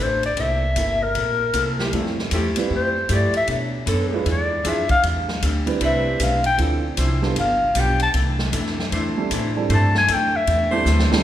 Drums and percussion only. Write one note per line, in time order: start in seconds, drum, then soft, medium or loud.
0.23 ride soft
0.37 kick soft
0.37 ride medium
0.76 kick soft
0.76 hi-hat pedal soft
0.76 ride medium
1.15 kick soft
1.15 ride medium
1.53 kick soft
1.53 hi-hat pedal medium
1.53 ride medium
1.79 snare medium
1.93 kick soft
1.93 ride medium
2.06 snare soft
2.19 snare soft
2.31 kick soft
2.31 hi-hat pedal medium
2.31 ride medium
2.56 ride medium
2.71 kick soft
3.09 kick soft
3.09 hi-hat pedal soft
3.09 ride medium
3.34 ride soft
3.47 kick soft
3.47 ride medium
3.87 kick soft
3.87 hi-hat pedal medium
3.87 ride medium
4.26 kick soft
4.26 ride medium
4.65 kick soft
4.65 hi-hat pedal medium
4.65 ride medium
4.89 kick medium
4.89 ride soft
5.03 kick soft
5.03 ride medium
5.29 snare soft
5.42 kick soft
5.42 hi-hat pedal medium
5.42 ride medium
5.67 ride soft
5.81 kick soft
5.81 ride medium
6.20 kick soft
6.20 hi-hat pedal medium
6.20 ride medium
6.44 ride medium
6.58 kick soft
6.58 ride medium
6.97 kick soft
6.97 hi-hat pedal medium
6.97 ride medium
7.23 snare soft
7.36 kick soft
7.36 ride medium
7.75 kick soft
7.75 hi-hat pedal medium
7.75 ride medium
8.00 ride medium
8.14 kick soft
8.14 ride medium
8.39 snare medium
8.53 kick soft
8.53 hi-hat pedal medium
8.53 ride medium
8.67 snare soft
8.79 snare soft
8.92 kick soft
8.92 ride medium
9.31 kick soft
9.31 hi-hat pedal medium
9.31 ride medium
9.70 kick soft
9.70 ride medium
9.95 snare medium
10.08 kick soft
10.08 hi-hat pedal medium
10.08 ride medium
10.47 kick soft
10.47 ride medium
10.86 snare soft
10.86 hi-hat pedal medium
10.99 snare medium
11.12 snare medium